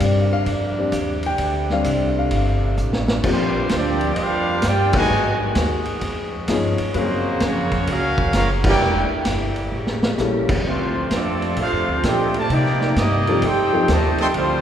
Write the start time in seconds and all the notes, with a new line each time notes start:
Already playing: C3 G3 A#3 C4 D4
0.00 G2 D5, kick, hi-hat pedal, ride
0.33 F5
0.46 F2, kick, ride
0.52 D5
0.78 G3 C4 D4
0.92 D#2, kick, hi-hat pedal, ride
1.23 G5, ride
1.38 D2 A3, kick, ride
1.70 G3 C4 D4 F5, snare
1.84 C2, kick, hi-hat pedal, ride
1.90 D5
2.19 F5
2.31 G1, kick, ride
2.36 F5
2.77 A1, hi-hat pedal
2.93 snare
3.08 snare
3.23 A#1 C3 F3 G3 A#3 C4 D4 G4, kick, crash
3.29 F3 G3 C4 D4 F4 C5
3.69 D2 G3 D4, kick, snare, hi-hat pedal, ride
3.73 F3 C4 F4 G4 D5
4.01 ride
4.15 F2 D#5, kick, ride
4.20 G3 D4 F4 G4 C5 F5
4.62 G2 G3 D4 G4 C5, kick, snare, hi-hat pedal, ride
4.66 F4 D5 G5
4.93 B2 D#3 F#3 G#3 A#3 B3 D#4 F#4 G#4 B4 D#5, kick, crash
4.97 G#5
5.09 G#2 D#3 G#3 B3 F#4
5.55 D#2, kick, snare, hi-hat pedal, ride
5.85 ride
6.01 F2 C#3 G#3 G#4, kick, ride
6.48 G2 F3 B3 C#4 D#4 G#4, kick, snare, hi-hat pedal, ride
6.78 muted upright bass stroke, ride
6.92 F#2 F#3 A#3 C#4 B4 F5, kick, ride
6.97 C#3 F#3 A#3 C4 F4 F#4 G#4 C5
7.40 F2 A#3 C#4 F4 C#5, kick, snare, hi-hat pedal, ride
7.45 C#3 F#4
7.71 kick, ride
7.87 C#2 A#3 C#4 F#4 A#4 F5, kick, ride
8.18 kick
8.33 F#1 A#3 C#4 F4 F#4 A#4 F5, kick, snare, hi-hat pedal, ride
8.64 G3 A#3 D4 E4 F#4 G4 G5, kick, crash
8.69 E4 A#4 D5
8.79 E1 D3 G3 E4
9.11 muted upright bass stroke
9.25 G1, kick, snare, hi-hat pedal, ride
9.56 ride
9.72 A1 C#3 A3 G4
9.87 snare
10.03 snare
10.18 A#1 G3 A#3 C#4 E4 A4, snare, hi-hat pedal
10.49 kick, crash
10.64 D2 C3 F3 A3 C4 F4, kick
10.68 D4 C5
11.10 F2 F3 A3 C4 D4 A4, kick, snare, hi-hat pedal, ride
11.14 F4 D5
11.42 ride
11.56 A2 A3 C4 D4 F4 A4 C5 F5, kick, ride
11.72 F2
11.88 D2
12.03 A#2 F3 A3 C4 D4 D#4 G4 A4 C5 G5, kick, snare, hi-hat pedal, ride
12.34 C3 F3 A3 F4 C5 A5, ride
12.38 D5
12.49 C3 G3 A#3 D#4 G4 D5, kick, ride
12.66 snare
12.81 snare
12.96 G2 G3 A#3 D#4 G4 D5 D#5, kick, snare, hi-hat pedal, ride
13.27 F3 A3 C4 D#4 G4, ride
13.42 F2 D#3 G3 A3 C4 D#4 F4 G4 A4 C5 G5, kick, ride
13.73 F3 A3 C4 D#4 G4
13.88 D#2 C3 D#3 A3 G4 C5 D#5 A5, kick, snare, hi-hat pedal, ride
14.18 D#3 A3 C4 A4 D#5 G5 C6, muted upright bass stroke, ride
14.34 D2 D3 F3 G3 A#3 C4 D4 F4 G4 C5, kick, ride